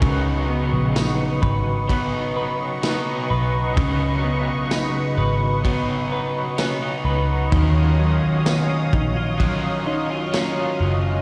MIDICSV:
0, 0, Header, 1, 6, 480
1, 0, Start_track
1, 0, Tempo, 937500
1, 13, Time_signature, 4, 2, 24, 8
1, 5744, End_track
2, 0, Start_track
2, 0, Title_t, "Analog synth pad"
2, 0, Program_c, 0, 89
2, 0, Note_on_c, 0, 85, 90
2, 9, Note_on_c, 0, 71, 70
2, 11, Note_on_c, 0, 75, 71
2, 3831, Note_off_c, 0, 71, 0
2, 3832, Note_off_c, 0, 75, 0
2, 3836, Note_off_c, 0, 85, 0
2, 3850, Note_on_c, 0, 73, 74
2, 3852, Note_on_c, 0, 77, 68
2, 3852, Note_on_c, 0, 87, 84
2, 3853, Note_on_c, 0, 75, 71
2, 5744, Note_off_c, 0, 73, 0
2, 5744, Note_off_c, 0, 75, 0
2, 5744, Note_off_c, 0, 77, 0
2, 5744, Note_off_c, 0, 87, 0
2, 5744, End_track
3, 0, Start_track
3, 0, Title_t, "Clean electric guitar"
3, 0, Program_c, 1, 27
3, 0, Note_on_c, 1, 61, 65
3, 0, Note_on_c, 1, 63, 61
3, 0, Note_on_c, 1, 70, 66
3, 9, Note_on_c, 1, 49, 84
3, 58, Note_off_c, 1, 70, 0
3, 246, Note_off_c, 1, 61, 0
3, 248, Note_on_c, 1, 59, 67
3, 484, Note_off_c, 1, 63, 0
3, 486, Note_on_c, 1, 63, 64
3, 727, Note_on_c, 1, 71, 72
3, 961, Note_off_c, 1, 59, 0
3, 967, Note_on_c, 1, 59, 61
3, 1203, Note_off_c, 1, 71, 0
3, 1209, Note_on_c, 1, 71, 73
3, 1445, Note_off_c, 1, 63, 0
3, 1447, Note_on_c, 1, 63, 62
3, 1684, Note_off_c, 1, 71, 0
3, 1690, Note_on_c, 1, 71, 72
3, 1922, Note_off_c, 1, 49, 0
3, 1928, Note_on_c, 1, 49, 90
3, 2165, Note_off_c, 1, 59, 0
3, 2171, Note_on_c, 1, 59, 69
3, 2409, Note_off_c, 1, 63, 0
3, 2411, Note_on_c, 1, 63, 64
3, 2645, Note_off_c, 1, 71, 0
3, 2651, Note_on_c, 1, 71, 72
3, 2887, Note_off_c, 1, 59, 0
3, 2893, Note_on_c, 1, 59, 70
3, 3128, Note_off_c, 1, 71, 0
3, 3134, Note_on_c, 1, 71, 72
3, 3371, Note_off_c, 1, 63, 0
3, 3373, Note_on_c, 1, 61, 69
3, 3494, Note_off_c, 1, 61, 0
3, 3494, Note_on_c, 1, 63, 57
3, 3604, Note_off_c, 1, 71, 0
3, 3610, Note_on_c, 1, 71, 66
3, 3848, Note_off_c, 1, 49, 0
3, 3850, Note_on_c, 1, 51, 96
3, 3900, Note_off_c, 1, 71, 0
3, 3901, Note_off_c, 1, 59, 0
3, 3902, Note_off_c, 1, 63, 0
3, 4093, Note_on_c, 1, 54, 73
3, 4332, Note_on_c, 1, 59, 67
3, 4452, Note_off_c, 1, 59, 0
3, 4452, Note_on_c, 1, 61, 58
3, 4572, Note_on_c, 1, 63, 70
3, 4691, Note_off_c, 1, 63, 0
3, 4691, Note_on_c, 1, 65, 57
3, 4811, Note_off_c, 1, 54, 0
3, 4813, Note_on_c, 1, 54, 70
3, 5048, Note_off_c, 1, 65, 0
3, 5051, Note_on_c, 1, 63, 76
3, 5172, Note_off_c, 1, 63, 0
3, 5172, Note_on_c, 1, 65, 57
3, 5287, Note_off_c, 1, 61, 0
3, 5293, Note_on_c, 1, 61, 65
3, 5526, Note_off_c, 1, 65, 0
3, 5532, Note_on_c, 1, 65, 70
3, 5744, Note_off_c, 1, 51, 0
3, 5744, Note_off_c, 1, 54, 0
3, 5744, Note_off_c, 1, 61, 0
3, 5744, Note_off_c, 1, 65, 0
3, 5744, End_track
4, 0, Start_track
4, 0, Title_t, "Overdriven electric guitar"
4, 0, Program_c, 2, 29
4, 0, Note_on_c, 2, 49, 81
4, 9, Note_on_c, 2, 54, 99
4, 21, Note_on_c, 2, 59, 90
4, 32, Note_on_c, 2, 63, 92
4, 40, Note_on_c, 2, 71, 101
4, 959, Note_off_c, 2, 54, 0
4, 961, Note_on_c, 2, 54, 71
4, 965, Note_off_c, 2, 49, 0
4, 966, Note_off_c, 2, 59, 0
4, 972, Note_on_c, 2, 59, 74
4, 979, Note_off_c, 2, 63, 0
4, 981, Note_on_c, 2, 63, 73
4, 984, Note_off_c, 2, 71, 0
4, 991, Note_on_c, 2, 71, 82
4, 1437, Note_off_c, 2, 54, 0
4, 1439, Note_on_c, 2, 54, 66
4, 1446, Note_off_c, 2, 59, 0
4, 1452, Note_on_c, 2, 59, 68
4, 1460, Note_off_c, 2, 63, 0
4, 1462, Note_off_c, 2, 71, 0
4, 1462, Note_on_c, 2, 63, 72
4, 1469, Note_on_c, 2, 71, 74
4, 1915, Note_on_c, 2, 49, 90
4, 1927, Note_off_c, 2, 54, 0
4, 1929, Note_on_c, 2, 54, 100
4, 1932, Note_off_c, 2, 59, 0
4, 1941, Note_off_c, 2, 71, 0
4, 1942, Note_on_c, 2, 59, 93
4, 1949, Note_off_c, 2, 63, 0
4, 1951, Note_on_c, 2, 63, 102
4, 1960, Note_on_c, 2, 71, 96
4, 2884, Note_off_c, 2, 49, 0
4, 2885, Note_off_c, 2, 54, 0
4, 2887, Note_on_c, 2, 54, 80
4, 2890, Note_off_c, 2, 59, 0
4, 2896, Note_on_c, 2, 59, 82
4, 2903, Note_off_c, 2, 63, 0
4, 2905, Note_on_c, 2, 63, 82
4, 2907, Note_off_c, 2, 71, 0
4, 2913, Note_on_c, 2, 71, 82
4, 3359, Note_off_c, 2, 54, 0
4, 3361, Note_on_c, 2, 54, 65
4, 3367, Note_off_c, 2, 59, 0
4, 3374, Note_on_c, 2, 59, 73
4, 3381, Note_off_c, 2, 63, 0
4, 3383, Note_off_c, 2, 71, 0
4, 3383, Note_on_c, 2, 63, 74
4, 3392, Note_on_c, 2, 71, 83
4, 3840, Note_on_c, 2, 51, 99
4, 3851, Note_off_c, 2, 54, 0
4, 3853, Note_off_c, 2, 59, 0
4, 3853, Note_on_c, 2, 54, 94
4, 3863, Note_off_c, 2, 71, 0
4, 3867, Note_on_c, 2, 61, 99
4, 3874, Note_off_c, 2, 63, 0
4, 3876, Note_on_c, 2, 65, 104
4, 3884, Note_on_c, 2, 70, 112
4, 4799, Note_off_c, 2, 54, 0
4, 4801, Note_on_c, 2, 54, 70
4, 4812, Note_off_c, 2, 61, 0
4, 4814, Note_on_c, 2, 61, 82
4, 4818, Note_off_c, 2, 65, 0
4, 4824, Note_on_c, 2, 65, 86
4, 4829, Note_off_c, 2, 51, 0
4, 4829, Note_off_c, 2, 70, 0
4, 4831, Note_on_c, 2, 70, 83
4, 5281, Note_off_c, 2, 54, 0
4, 5283, Note_on_c, 2, 54, 75
4, 5291, Note_off_c, 2, 61, 0
4, 5293, Note_on_c, 2, 61, 73
4, 5298, Note_off_c, 2, 65, 0
4, 5305, Note_on_c, 2, 65, 83
4, 5311, Note_off_c, 2, 70, 0
4, 5313, Note_on_c, 2, 70, 87
4, 5744, Note_off_c, 2, 54, 0
4, 5744, Note_off_c, 2, 61, 0
4, 5744, Note_off_c, 2, 65, 0
4, 5744, Note_off_c, 2, 70, 0
4, 5744, End_track
5, 0, Start_track
5, 0, Title_t, "Picked electric bass"
5, 0, Program_c, 3, 34
5, 9, Note_on_c, 3, 37, 122
5, 353, Note_off_c, 3, 37, 0
5, 372, Note_on_c, 3, 34, 91
5, 715, Note_off_c, 3, 34, 0
5, 731, Note_on_c, 3, 32, 81
5, 1671, Note_off_c, 3, 32, 0
5, 1693, Note_on_c, 3, 35, 96
5, 1921, Note_off_c, 3, 35, 0
5, 1929, Note_on_c, 3, 37, 113
5, 2292, Note_off_c, 3, 37, 0
5, 2292, Note_on_c, 3, 35, 91
5, 2635, Note_off_c, 3, 35, 0
5, 2651, Note_on_c, 3, 32, 87
5, 3592, Note_off_c, 3, 32, 0
5, 3609, Note_on_c, 3, 37, 91
5, 3839, Note_off_c, 3, 37, 0
5, 3852, Note_on_c, 3, 39, 125
5, 4209, Note_off_c, 3, 39, 0
5, 4209, Note_on_c, 3, 35, 96
5, 4553, Note_off_c, 3, 35, 0
5, 4572, Note_on_c, 3, 34, 101
5, 5512, Note_off_c, 3, 34, 0
5, 5532, Note_on_c, 3, 30, 92
5, 5744, Note_off_c, 3, 30, 0
5, 5744, End_track
6, 0, Start_track
6, 0, Title_t, "Drums"
6, 10, Note_on_c, 9, 36, 113
6, 12, Note_on_c, 9, 51, 61
6, 61, Note_off_c, 9, 36, 0
6, 63, Note_off_c, 9, 51, 0
6, 491, Note_on_c, 9, 38, 117
6, 492, Note_on_c, 9, 51, 66
6, 492, Note_on_c, 9, 54, 69
6, 542, Note_off_c, 9, 38, 0
6, 543, Note_off_c, 9, 51, 0
6, 544, Note_off_c, 9, 54, 0
6, 731, Note_on_c, 9, 36, 92
6, 782, Note_off_c, 9, 36, 0
6, 970, Note_on_c, 9, 36, 73
6, 973, Note_on_c, 9, 51, 70
6, 1021, Note_off_c, 9, 36, 0
6, 1024, Note_off_c, 9, 51, 0
6, 1449, Note_on_c, 9, 51, 66
6, 1450, Note_on_c, 9, 54, 64
6, 1452, Note_on_c, 9, 38, 126
6, 1501, Note_off_c, 9, 51, 0
6, 1501, Note_off_c, 9, 54, 0
6, 1503, Note_off_c, 9, 38, 0
6, 1931, Note_on_c, 9, 36, 122
6, 1932, Note_on_c, 9, 51, 65
6, 1982, Note_off_c, 9, 36, 0
6, 1983, Note_off_c, 9, 51, 0
6, 2411, Note_on_c, 9, 38, 123
6, 2412, Note_on_c, 9, 51, 66
6, 2412, Note_on_c, 9, 54, 79
6, 2463, Note_off_c, 9, 38, 0
6, 2463, Note_off_c, 9, 51, 0
6, 2464, Note_off_c, 9, 54, 0
6, 2891, Note_on_c, 9, 36, 79
6, 2894, Note_on_c, 9, 51, 62
6, 2942, Note_off_c, 9, 36, 0
6, 2945, Note_off_c, 9, 51, 0
6, 3369, Note_on_c, 9, 51, 69
6, 3370, Note_on_c, 9, 54, 64
6, 3372, Note_on_c, 9, 38, 116
6, 3421, Note_off_c, 9, 51, 0
6, 3422, Note_off_c, 9, 54, 0
6, 3423, Note_off_c, 9, 38, 0
6, 3852, Note_on_c, 9, 36, 117
6, 3852, Note_on_c, 9, 51, 63
6, 3903, Note_off_c, 9, 36, 0
6, 3903, Note_off_c, 9, 51, 0
6, 4331, Note_on_c, 9, 38, 125
6, 4332, Note_on_c, 9, 51, 70
6, 4332, Note_on_c, 9, 54, 78
6, 4382, Note_off_c, 9, 38, 0
6, 4383, Note_off_c, 9, 51, 0
6, 4383, Note_off_c, 9, 54, 0
6, 4572, Note_on_c, 9, 36, 99
6, 4624, Note_off_c, 9, 36, 0
6, 4812, Note_on_c, 9, 36, 81
6, 4814, Note_on_c, 9, 51, 62
6, 4863, Note_off_c, 9, 36, 0
6, 4865, Note_off_c, 9, 51, 0
6, 5292, Note_on_c, 9, 51, 67
6, 5293, Note_on_c, 9, 54, 69
6, 5294, Note_on_c, 9, 38, 127
6, 5343, Note_off_c, 9, 51, 0
6, 5344, Note_off_c, 9, 54, 0
6, 5345, Note_off_c, 9, 38, 0
6, 5744, End_track
0, 0, End_of_file